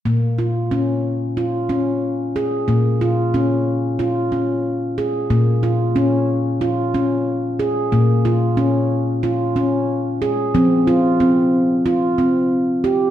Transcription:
<<
  \new Staff \with { instrumentName = "Handpan" } { \time 4/4 \key bes \minor \tempo 4 = 92 bes8 f'8 des'4 f'8 des'4 aes'8 | bes8 f'8 des'4 f'8 des'4 aes'8 | bes8 f'8 des'4 f'8 des'4 aes'8 | bes8 f'8 des'4 f'8 des'4 aes'8 |
c'8 f'8 c'4 f'8 c'4 g'8 | }
  \new Staff \with { instrumentName = "Handpan" } { \clef bass \time 4/4 \key bes \minor bes,1 | bes,1 | bes,1 | bes,1 |
f1 | }
>>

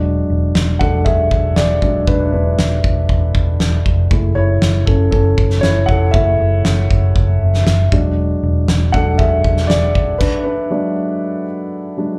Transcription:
<<
  \new Staff \with { instrumentName = "Grand piano" } { \time 4/4 \key e \mixolydian \tempo 4 = 118 r4. <a' fis''>8 <gis' e''>4 <gis' d''>4 | <d' b'>8 <d' b'>4 r2 r8 | r8 <e' cis''>4 <cis' a'>8 <cis' a'>4 <e' cis''>8 <a' fis''>8 | <a' e''>2. r4 |
r4. <a' fis''>8 <gis' e''>4 <gis' d''>4 | <d' b'>8 <d' b'>4 r2 r8 | }
  \new Staff \with { instrumentName = "Grand piano" } { \clef bass \time 4/4 \key e \mixolydian <fis gis d'>4 r8 <fis gis d'>8 r4. <fis gis d'>8~ | <fis gis d'>4 r2. | <a e' gis'>1 | <a e' gis'>4. r2 <fis gis d'>8~ |
<fis gis d'>4 r8 <fis gis d'>8 r2 | r4 <fis gis d'>4. r4 <fis gis d'>8 | }
  \new Staff \with { instrumentName = "Fingered electric bass" } { \clef bass \time 4/4 \key e \mixolydian e,,8 e,,8 e,,8 e,,8 e,,8 e,,8 e,,8 dis,,8 | e,,8 e,,8 e,,8 e,,8 e,,8 e,,8 e,,8 eis,,8 | fis,,8 fis,,8 fis,,8 fis,,8 fis,,8 fis,,8 fis,,8 eis,,8 | fis,,8 fis,,8 fis,,8 fis,,8 fis,,8 fis,,8 fis,,8 e,,8~ |
e,,8 e,,8 e,,8 e,,8 e,,8 e,,8 e,,8 dis,,8 | r1 | }
  \new DrumStaff \with { instrumentName = "Drums" } \drummode { \time 4/4 r4 sn8 bd8 bd8 bd8 sn8 bd8 | bd4 sn8 bd8 bd8 bd8 sn8 bd8 | bd4 sn8 bd8 bd8 bd16 sn16 sn8 bd8 | bd4 sn8 bd8 bd8. sn16 sn8 bd8 |
r4 sn8 bd8 bd8 bd16 sn16 sn8 bd8 | <cymc bd>4 r4 r4 r4 | }
>>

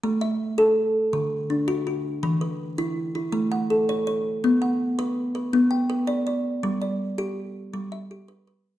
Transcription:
\new Staff \with { instrumentName = "Kalimba" } { \time 12/8 \key a \mixolydian \tempo 4. = 109 << { r8 e''4. r2 d'4 fis'4~ | fis'8 b'4. r8 e'4 fis''8 a'4 cis''4~ | cis''8 fis''4. r8 b'4 g''8 b'4 d''4~ | d''8 d''4. r4. e''8 g'4 b'4 | } \\ { a4 r8 a'4 r8 d4 r8 fis'4 r8 | e4 r8 e'4 r8 a4 r8 cis''4 r8 | b4 r8 b'4 r8 b4 r8 d''4 r8 | g4 r8 g'4 r8 g4 r8 b'4 r8 | } >> }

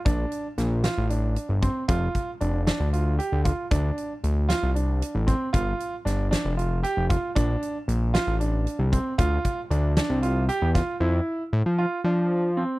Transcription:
<<
  \new Staff \with { instrumentName = "Grand piano" } { \time 7/8 \key d \minor \tempo 4 = 115 d'4 r8 f'8 d'4 c'8 | f'4 d'8 d'8 f'8 g'8 f'8 | d'4 r8 f'8 d'4 c'8 | f'4 d'8 d'8 f'8 g'8 f'8 |
d'4 r8 f'8 d'4 c'8 | f'4 d'8 d'8 f'8 g'8 f'8 | e'4 r8 f'8 d'4 c'8 | }
  \new Staff \with { instrumentName = "Analog synth bass" } { \clef bass \time 7/8 \key d \minor bes,,8 r8 bes,,8. a,,4 g,,8 r16 | f,,8 r8 f,,8. d,4 d,8 r16 | d,8 r8 d,8. c,4 a,,8 r16 | g,,8 r8 g,,8. f,,4 f,,8 r16 |
bes,,8 r8 bes,,8. a,,4 c,8 r16 | d,8 r8 d,8. c,4 e,8 r16 | f,8 r8 a,16 f8 r16 f4. | }
  \new DrumStaff \with { instrumentName = "Drums" } \drummode { \time 7/8 <hh bd>8 hh8 <hh sn>8 <hh sn>8 hh8 hh8 <hh bd>8 | <hh bd>8 <hh bd>8 hh8 <hh sn>8 hh8 hh8 <hh bd>8 | <hh bd>8 hh8 hh8 <hh sn>8 hh8 hh8 <hh bd>8 | <hh bd>8 hh8 <hh sn>8 <hh sn>8 hh8 hh8 <hh bd>8 |
<hh bd>8 hh8 hh8 <hh sn>8 hh8 hh8 <hh bd>8 | <hh bd>8 <hh bd>8 hh8 <hh sn>8 hh8 hh8 <hh bd sn>8 | r4. r4 r4 | }
>>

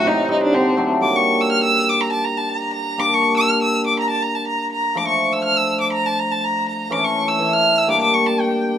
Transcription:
<<
  \new Staff \with { instrumentName = "Violin" } { \time 2/4 \tempo 4 = 122 ees'8 ees'16 d'16 c'8. r16 | d'''16 cis'''8 e'''16 f'''16 e'''8 d'''16 | bes''16 a''16 bes''16 a''16 bes''8 bes''8 | d'''16 cis'''8 e'''16 f'''16 e'''8 d'''16 |
bes''16 a''16 bes''16 a''16 bes''8 bes''8 | d'''16 cis'''8 e'''16 f'''16 e'''8 d'''16 | bes''16 a''16 bes''16 a''16 bes''8 bes''8 | d'''16 cis'''8 e'''8 f'''8 e'''16 |
d'''16 d'''16 cis'''16 a''16 g''8. r16 | }
  \new Staff \with { instrumentName = "Hammered dulcimer" } { \time 2/4 << { r8 <g c' ees'>16 r8. <fis a d'>16 r16 | <g bes d'>2~ | <g bes d'>2 | <g bes d'>2~ |
<g bes d'>2 | <f a d'>2~ | <f a d'>2 | <e a cis'>4 <e a e'>4 |
<g bes d'>2 | } \\ { c4 d4 | r2 | r2 | r2 |
r2 | r2 | r2 | r2 |
r2 | } >> }
>>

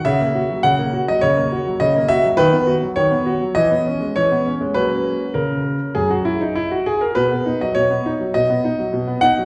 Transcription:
<<
  \new Staff \with { instrumentName = "Grand piano" } { \time 4/4 \key b \major \tempo 4 = 102 e''4 fis''8. dis''16 cis''4 dis''8 e''8 | b'4 cis''4 dis''4 cis''4 | b'4 ais'4 gis'16 fis'16 e'16 dis'16 e'16 fis'16 gis'16 ais'16 | b'8. dis''16 cis''4 dis''4. fis''8 | }
  \new Staff \with { instrumentName = "Grand piano" } { \clef bass \time 4/4 \key b \major cis16 ais16 fis'16 fis16 cis16 ais16 fis'16 fis16 cis16 ais16 fis'16 fis16 cis16 ais16 fis'16 fis16 | dis16 b16 fis'16 fis16 dis16 b16 fis'16 fis16 e16 b16 cis'16 gis16 e16 b16 cis'16 gis16 | <fis ais cis'>4 cis4 fis,4 r4 | b,16 b16 dis'16 fis16 b,16 b16 dis'16 fis16 b,16 b16 dis'16 fis16 b,16 b16 dis'16 fis16 | }
>>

